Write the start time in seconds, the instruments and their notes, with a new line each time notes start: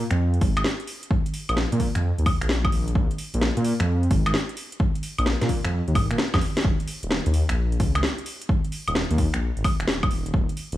0.11 detuned saw bass F2, finger snap, closed hi-hat
0.34 closed hi-hat
0.41 detuned saw bass G#1, kick, open hi-hat
0.57 detuned saw bass G#1, finger snap, closed hi-hat, high woodblock
0.64 snare
0.80 closed hi-hat
0.87 open hi-hat
1.03 closed hi-hat
1.11 kick
1.26 closed hi-hat
1.34 open hi-hat
1.49 detuned saw bass A#1, closed hi-hat, high woodblock
1.57 snare
1.72 detuned saw bass A#2, closed hi-hat
1.80 kick, open hi-hat
1.95 detuned saw bass F2, finger snap, closed hi-hat
2.18 detuned saw bass D#2, closed hi-hat
2.26 kick, open hi-hat, high woodblock
2.41 detuned saw bass A#1, finger snap, closed hi-hat
2.49 snare
2.65 kick, closed hi-hat, high woodblock
2.72 open hi-hat
2.88 closed hi-hat
2.95 detuned saw bass A#1, kick
3.11 closed hi-hat
3.18 open hi-hat
3.34 detuned saw bass A#1, closed hi-hat
3.41 snare
3.57 detuned saw bass A#2, closed hi-hat
3.65 open hi-hat
3.80 detuned saw bass F2, finger snap, closed hi-hat
4.03 closed hi-hat
4.11 detuned saw bass G#1, kick, open hi-hat
4.26 detuned saw bass G#1, finger snap, closed hi-hat, high woodblock
4.34 snare
4.49 closed hi-hat
4.57 open hi-hat
4.72 closed hi-hat
4.80 kick
4.95 closed hi-hat
5.03 open hi-hat
5.18 detuned saw bass A#1, closed hi-hat, high woodblock
5.26 snare
5.41 detuned saw bass A#2, snare, closed hi-hat
5.49 kick, open hi-hat
5.65 detuned saw bass F2, finger snap, closed hi-hat
5.88 detuned saw bass D#2, closed hi-hat
5.95 detuned saw bass G#1, kick, open hi-hat, high woodblock
6.11 detuned saw bass A#2, finger snap, closed hi-hat
6.18 snare
6.34 detuned saw bass F2, kick, snare, closed hi-hat, high woodblock
6.41 open hi-hat
6.57 snare, closed hi-hat
6.65 detuned saw bass D#1, kick
6.80 closed hi-hat
6.88 open hi-hat
7.03 detuned saw bass D#1, closed hi-hat
7.11 snare
7.26 detuned saw bass D#2, closed hi-hat
7.34 open hi-hat
7.49 detuned saw bass A#1, finger snap, closed hi-hat
7.72 closed hi-hat
7.80 detuned saw bass C#2, kick, open hi-hat
7.95 detuned saw bass C#2, finger snap, closed hi-hat, high woodblock
8.03 snare
8.18 closed hi-hat
8.26 open hi-hat
8.41 closed hi-hat
8.49 kick
8.64 closed hi-hat
8.72 open hi-hat
8.88 detuned saw bass D#1, closed hi-hat, high woodblock
8.95 snare
9.11 detuned saw bass D#2, closed hi-hat
9.18 kick, open hi-hat
9.34 detuned saw bass A#1, finger snap, closed hi-hat
9.57 detuned saw bass G#1, closed hi-hat
9.64 kick, open hi-hat, high woodblock
9.80 detuned saw bass D#1, finger snap, closed hi-hat
9.88 snare
10.03 kick, closed hi-hat, high woodblock
10.11 open hi-hat
10.26 closed hi-hat
10.34 detuned saw bass D#1, kick
10.49 closed hi-hat
10.57 open hi-hat
10.72 detuned saw bass D#1, closed hi-hat